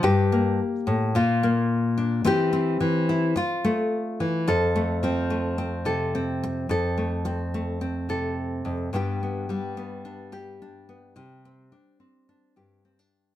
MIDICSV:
0, 0, Header, 1, 3, 480
1, 0, Start_track
1, 0, Key_signature, -1, "major"
1, 0, Tempo, 556586
1, 36, Time_signature, 4, 2, 24, 8
1, 11513, End_track
2, 0, Start_track
2, 0, Title_t, "Nylon-string guitar"
2, 0, Program_c, 0, 24
2, 25, Note_on_c, 0, 43, 91
2, 33, Note_on_c, 0, 67, 81
2, 279, Note_on_c, 0, 58, 63
2, 508, Note_off_c, 0, 43, 0
2, 749, Note_on_c, 0, 45, 68
2, 963, Note_off_c, 0, 67, 0
2, 967, Note_off_c, 0, 58, 0
2, 989, Note_off_c, 0, 45, 0
2, 992, Note_on_c, 0, 46, 82
2, 999, Note_on_c, 0, 65, 75
2, 1236, Note_on_c, 0, 58, 66
2, 1704, Note_on_c, 0, 62, 59
2, 1918, Note_off_c, 0, 62, 0
2, 1923, Note_off_c, 0, 58, 0
2, 1932, Note_off_c, 0, 46, 0
2, 1940, Note_on_c, 0, 52, 69
2, 1940, Note_on_c, 0, 60, 67
2, 1950, Note_off_c, 0, 65, 0
2, 1959, Note_on_c, 0, 67, 70
2, 2169, Note_off_c, 0, 60, 0
2, 2179, Note_on_c, 0, 60, 66
2, 2408, Note_off_c, 0, 52, 0
2, 2419, Note_on_c, 0, 52, 75
2, 2666, Note_on_c, 0, 64, 58
2, 2873, Note_off_c, 0, 52, 0
2, 2873, Note_off_c, 0, 60, 0
2, 2877, Note_off_c, 0, 64, 0
2, 2882, Note_off_c, 0, 67, 0
2, 2907, Note_on_c, 0, 65, 68
2, 3143, Note_on_c, 0, 57, 65
2, 3623, Note_on_c, 0, 52, 66
2, 3834, Note_off_c, 0, 57, 0
2, 3859, Note_on_c, 0, 41, 73
2, 3861, Note_off_c, 0, 52, 0
2, 3862, Note_off_c, 0, 65, 0
2, 3865, Note_on_c, 0, 69, 64
2, 4101, Note_on_c, 0, 57, 54
2, 4336, Note_on_c, 0, 53, 61
2, 4344, Note_on_c, 0, 60, 59
2, 4569, Note_off_c, 0, 57, 0
2, 4573, Note_on_c, 0, 57, 52
2, 4809, Note_off_c, 0, 60, 0
2, 4813, Note_on_c, 0, 60, 58
2, 5042, Note_off_c, 0, 69, 0
2, 5047, Note_on_c, 0, 48, 60
2, 5052, Note_on_c, 0, 69, 56
2, 5292, Note_off_c, 0, 60, 0
2, 5302, Note_on_c, 0, 60, 55
2, 5536, Note_off_c, 0, 57, 0
2, 5747, Note_off_c, 0, 48, 0
2, 5749, Note_off_c, 0, 69, 0
2, 5751, Note_off_c, 0, 53, 0
2, 5761, Note_off_c, 0, 41, 0
2, 5771, Note_on_c, 0, 41, 75
2, 5785, Note_on_c, 0, 69, 71
2, 6016, Note_on_c, 0, 57, 55
2, 6247, Note_off_c, 0, 60, 0
2, 6258, Note_on_c, 0, 60, 61
2, 6494, Note_off_c, 0, 57, 0
2, 6504, Note_on_c, 0, 57, 54
2, 6726, Note_off_c, 0, 60, 0
2, 6736, Note_on_c, 0, 60, 52
2, 6972, Note_off_c, 0, 69, 0
2, 6976, Note_on_c, 0, 48, 64
2, 6982, Note_on_c, 0, 69, 56
2, 7448, Note_off_c, 0, 41, 0
2, 7458, Note_on_c, 0, 41, 58
2, 7673, Note_off_c, 0, 48, 0
2, 7676, Note_off_c, 0, 69, 0
2, 7678, Note_off_c, 0, 57, 0
2, 7696, Note_off_c, 0, 41, 0
2, 7699, Note_on_c, 0, 43, 75
2, 7700, Note_off_c, 0, 60, 0
2, 7706, Note_on_c, 0, 55, 61
2, 7713, Note_on_c, 0, 59, 59
2, 7719, Note_on_c, 0, 62, 59
2, 7726, Note_on_c, 0, 67, 71
2, 7948, Note_off_c, 0, 59, 0
2, 7958, Note_on_c, 0, 59, 57
2, 8182, Note_off_c, 0, 55, 0
2, 8185, Note_on_c, 0, 55, 60
2, 8189, Note_off_c, 0, 62, 0
2, 8193, Note_on_c, 0, 62, 59
2, 8416, Note_off_c, 0, 59, 0
2, 8427, Note_on_c, 0, 59, 52
2, 8663, Note_off_c, 0, 62, 0
2, 8666, Note_on_c, 0, 62, 50
2, 8902, Note_off_c, 0, 67, 0
2, 8906, Note_on_c, 0, 67, 60
2, 9154, Note_off_c, 0, 62, 0
2, 9157, Note_on_c, 0, 62, 54
2, 9380, Note_off_c, 0, 59, 0
2, 9390, Note_on_c, 0, 59, 52
2, 9599, Note_off_c, 0, 43, 0
2, 9602, Note_off_c, 0, 59, 0
2, 9622, Note_on_c, 0, 48, 69
2, 9624, Note_off_c, 0, 67, 0
2, 9648, Note_off_c, 0, 62, 0
2, 9877, Note_on_c, 0, 60, 51
2, 10106, Note_off_c, 0, 48, 0
2, 10106, Note_on_c, 0, 62, 57
2, 10337, Note_off_c, 0, 60, 0
2, 10347, Note_on_c, 0, 60, 49
2, 10589, Note_off_c, 0, 62, 0
2, 10597, Note_on_c, 0, 62, 50
2, 10833, Note_on_c, 0, 43, 56
2, 10839, Note_on_c, 0, 67, 54
2, 11070, Note_off_c, 0, 60, 0
2, 11075, Note_off_c, 0, 62, 0
2, 11080, Note_on_c, 0, 60, 56
2, 11201, Note_off_c, 0, 60, 0
2, 11201, Note_on_c, 0, 62, 45
2, 11205, Note_off_c, 0, 55, 0
2, 11513, Note_off_c, 0, 43, 0
2, 11513, Note_off_c, 0, 62, 0
2, 11513, Note_off_c, 0, 67, 0
2, 11513, End_track
3, 0, Start_track
3, 0, Title_t, "Muted nylon-string guitar strokes"
3, 1936, Note_on_c, 9, 29, 84
3, 2022, Note_off_c, 9, 29, 0
3, 2895, Note_on_c, 9, 29, 77
3, 2981, Note_off_c, 9, 29, 0
3, 5550, Note_on_c, 9, 29, 58
3, 5636, Note_off_c, 9, 29, 0
3, 6252, Note_on_c, 9, 29, 63
3, 6339, Note_off_c, 9, 29, 0
3, 8902, Note_on_c, 9, 29, 61
3, 8988, Note_off_c, 9, 29, 0
3, 9628, Note_on_c, 9, 29, 62
3, 9714, Note_off_c, 9, 29, 0
3, 11513, End_track
0, 0, End_of_file